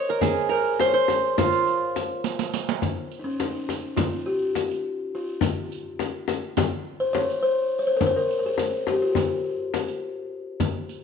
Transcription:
0.00 0.86 C#5 medium
0.00 0.46 D#5 medium
0.09 0.24 A#4 medium
0.09 0.49 A#4 medium
0.21 1.43 G#4 medium
0.21 0.53 G#4 medium
0.21 riq medium
0.21 frame drum medium
0.49 1.62 A#4 medium
0.49 0.81 A#4 loud
0.80 0.93 C5 medium
0.80 0.88 C5 loud
0.80 riq soft
0.80 frame drum medium
0.86 0.94 C#5 medium
0.93 1.99 C5 medium
0.93 1.39 C5 medium
1.08 riq soft
1.08 frame drum medium
1.38 2.73 F4 medium
1.38 2.50 F4 medium
1.38 riq medium
1.38 frame drum medium
1.53 riq soft
1.67 riq soft
1.96 riq soft
1.96 frame drum medium
2.24 riq medium
2.39 riq medium
2.54 riq medium
2.69 riq medium
2.82 riq medium
2.82 frame drum medium
3.11 riq soft
3.19 3.24 D#4 medium
3.24 3.40 C#4 medium
3.40 3.99 D#4 medium
3.40 riq soft
3.40 frame drum medium
3.69 riq soft
3.69 frame drum medium
3.97 4.27 F4 medium
3.97 riq medium
3.97 frame drum medium
4.26 5.15 G4 medium
4.55 riq medium
4.55 frame drum medium
4.71 riq soft
5.15 6.10 F4 medium
5.41 riq medium
5.41 frame drum loud
5.72 riq soft
5.99 riq medium
5.99 frame drum medium
6.28 riq soft
6.28 frame drum medium
6.57 riq medium
6.57 frame drum loud
7.00 7.15 C5 medium
7.13 7.44 C#5 medium
7.13 riq soft
7.13 frame drum medium
7.30 riq soft
7.43 7.80 C5 loud
7.79 7.88 C#5 medium
7.87 7.97 C5 medium
7.97 8.06 A#4 medium
8.01 riq medium
8.01 frame drum medium
8.07 8.16 C5 medium
8.16 8.38 A#4 loud
8.30 riq soft
8.39 8.45 A#4 medium
8.46 8.90 G#4 medium
8.58 riq medium
8.58 frame drum medium
8.87 9.03 G4 medium
8.87 riq soft
8.87 frame drum medium
9.02 10.59 F4 medium
9.15 riq medium
9.15 frame drum medium
9.74 riq medium
9.74 frame drum medium
9.88 riq soft
10.60 riq medium
10.60 frame drum medium
10.89 riq soft

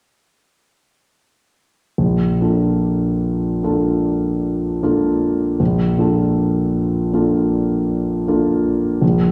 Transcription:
1.98 2.39 A#1 soft
2.41 3.60 A#3 soft
2.41 3.60 D4 soft
2.41 3.60 F4 soft
2.41 3.60 A4 soft
3.63 4.79 A#3 soft
3.63 4.79 D4 soft
3.63 4.79 F4 soft
3.63 4.80 A4 soft
4.83 5.56 A#3 soft
4.83 5.56 D4 soft
4.83 5.56 F4 soft
4.83 5.56 A4 soft
5.60 5.97 A#1 soft
5.98 7.09 A#3 soft
5.98 7.09 D4 soft
5.98 7.09 F4 soft
5.98 7.09 A4 soft
7.13 8.24 A#3 soft
7.13 8.24 D4 soft
7.13 8.24 F4 soft
7.13 8.24 A4 soft
8.28 8.99 A#3 soft
8.28 8.99 D4 soft
8.28 8.99 F4 soft
8.28 8.99 A4 soft
9.02 9.32 A#1 soft

